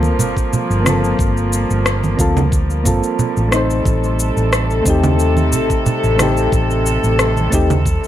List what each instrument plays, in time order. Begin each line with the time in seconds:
Already playing: fingered electric bass D2, string section F3 G3 A#3, synth keys A#3 C4 F4 A4
0.03 high conga, cabasa
0.19 fingered electric bass G1, low conga, cabasa
0.37 kick, cabasa
0.53 low conga, cabasa
0.70 fingered electric bass G1, cabasa
0.82 synth keys A#3 C4
0.86 synth keys F4 A4, cross-stick, low conga, cabasa
1.04 cabasa
1.19 fingered electric bass G1, kick, cabasa
1.37 cabasa
1.53 cabasa
1.70 fingered electric bass G1, cabasa
1.86 cross-stick, cabasa
2.04 high conga, cabasa
2.17 fingered electric bass D2, synth keys A#3 C4 F4 A4, kick, cabasa
2.37 low conga, cabasa
2.52 kick, cabasa
2.70 cabasa
2.84 fingered electric bass G1, synth keys A#3 C4 F4 A4, kick, low conga, cabasa
3.03 cabasa
3.19 low conga, cabasa
3.37 fingered electric bass A1, cabasa
3.49 string section C3 A4, synth keys A3 C4, cross-stick, cabasa
3.54 synth keys D#4 C5
3.70 cabasa
3.85 fingered electric bass A1, kick, cabasa
4.04 cabasa
4.20 cabasa
4.37 fingered electric bass A1, cabasa
4.53 cross-stick, cabasa
4.71 cabasa
4.82 fingered electric bass D#2, synth keys A3 C4, kick, cabasa
4.87 synth keys D#4 G4
5.04 low conga, cabasa
5.20 cabasa
5.37 high conga, cabasa
5.53 fingered electric bass A1, low conga, cabasa
5.70 kick, cabasa
5.86 low conga, cabasa
6.04 fingered electric bass A1, cabasa
6.15 synth keys A3 C4, cross-stick, low conga
6.19 synth keys D#4 G4, cabasa
6.37 cabasa
6.52 fingered electric bass A1, kick, cabasa
6.71 cabasa
6.86 cabasa
7.04 fingered electric bass A1, cabasa
7.19 cross-stick, cabasa
7.37 high conga, cabasa
7.50 fingered electric bass D#2, synth keys A3 C4 D#4, kick, cabasa
7.54 synth keys G4
7.70 low conga, cabasa
7.86 kick, cabasa
8.04 cabasa